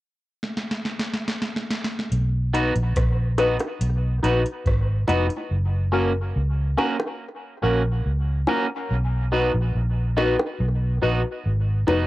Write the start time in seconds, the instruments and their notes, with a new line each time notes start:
0.43 snare
0.57 snare
0.71 snare
0.85 snare
0.99 snare
1.14 snare
1.28 snare
1.42 snare
1.56 snare
1.71 snare
1.84 snare
1.99 snare
2.12 fingered electric bass B1, closed hi-hat
2.53 clean electric guitar B3 D#4 F#4, synth stab D#4 F#4 B4, closed hi-hat
2.76 fingered electric bass A#1, closed hi-hat
2.96 fingered electric bass A#1, kick, cross-stick, closed hi-hat
3.38 clean electric guitar B3 D#4 F#4, synth stab D#4 F#4 B4, cross-stick, closed hi-hat, high bongo
3.59 muted clean electric guitar stroke, closed hi-hat, high bongo
3.81 fingered electric bass B1, closed hi-hat
4.23 fingered electric bass A#1, clean electric guitar B3 D#4 F#4, synth stab D#4 F#4 B4, closed hi-hat
4.46 closed hi-hat
4.66 fingered electric bass G#1, kick, cross-stick, closed hi-hat
5.08 fingered electric bass F1, clean electric guitar B3 D#4 F#4, synth stab D#4 F#4 B4, closed hi-hat, low bongo
5.29 muted clean electric guitar stroke, closed hi-hat
5.51 fingered electric bass F#1
5.92 clean electric guitar A#3 C#4 F#4, synth stab C#4 F#4 A#4
6.36 fingered electric bass C#2
6.77 clean electric guitar A#3 C#4 F#4, synth stab C#4 F#4 A#4, high bongo
6.98 muted clean electric guitar stroke, high bongo
7.62 fingered electric bass A#1, clean electric guitar A#3 C#4 F#4, synth stab C#4 F#4 A#4
8.06 fingered electric bass C#2
8.47 clean electric guitar A#3 C#4 F#4, synth stab C#4 F#4 A#4, low bongo
8.69 muted clean electric guitar stroke
8.91 fingered electric bass B1
9.32 clean electric guitar B3 D#4 F#4, synth stab D#4 F#4 B4
9.54 fingered electric bass A#1
9.75 fingered electric bass A#1
10.17 clean electric guitar B3 D#4 F#4, synth stab D#4 F#4 B4, high bongo
10.39 muted clean electric guitar stroke, high bongo
10.60 fingered electric bass B1
11.02 fingered electric bass A#1, clean electric guitar B3 D#4 F#4, synth stab D#4 F#4 B4
11.46 fingered electric bass G#1
11.87 fingered electric bass F1, clean electric guitar B3 D#4 F#4, synth stab D#4 F#4 B4, low bongo